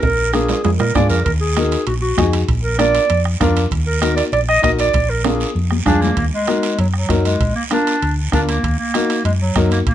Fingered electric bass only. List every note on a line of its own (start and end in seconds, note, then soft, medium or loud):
0.03 0.52 A#1 medium
0.65 0.77 F2 medium
0.80 0.94 A#2 medium
0.96 1.09 G#2 medium
1.10 1.24 F2 medium
1.26 1.75 D#2 medium
1.87 2.12 A#1 medium
2.18 2.42 F2 medium
2.49 2.98 A#1 medium
3.10 3.35 F2 medium
3.41 3.65 F2 medium
3.71 4.21 D#2 medium
4.32 4.57 A#1 medium
4.64 4.88 A#1 medium
4.94 5.43 A#1 medium
5.55 5.80 F2 medium
5.86 6.11 F2 medium
6.17 6.29 D#2 medium
6.78 7.03 F#2 medium
7.10 7.34 F#2 medium
7.40 7.53 A#1 medium
8.02 8.27 D2 medium
8.33 8.58 D2 medium
8.64 8.76 D#2 medium
9.25 9.49 F#2 medium
9.56 9.80 F#2 medium
9.87 9.94 A#1 medium